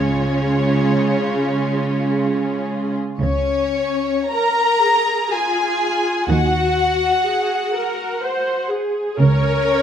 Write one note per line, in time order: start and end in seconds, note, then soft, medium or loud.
0.00 0.97 C#2 soft
0.00 2.99 C#3 soft
0.00 2.94 G#3 soft
0.00 2.95 C#4 soft
0.00 2.99 F4 soft
0.00 2.95 G#4 soft
0.00 2.63 C#5 medium
3.19 4.10 C#2 medium
3.19 4.11 C#3 medium
3.19 4.27 C#4 medium
3.19 4.27 C#5 medium
4.31 4.79 A#4 medium
4.31 5.32 A#4 medium
4.31 5.32 A#5 medium
4.82 5.32 G#4 soft
5.31 6.30 F4 medium
5.31 6.31 G#4 medium
5.31 6.30 G#5 medium
6.29 7.08 D#2 medium
6.29 7.08 D#3 medium
6.29 7.24 F#4 soft
6.29 8.67 F#4 medium
6.29 8.67 F#5 medium
7.25 7.73 G#4 medium
7.74 8.23 A#4 medium
8.22 8.70 C5 medium
8.69 9.18 G#4 medium
9.18 9.82 C#2 medium
9.18 9.82 C#3 medium
9.18 9.82 C#4 medium
9.18 9.82 A#4 medium
9.18 9.82 C#5 medium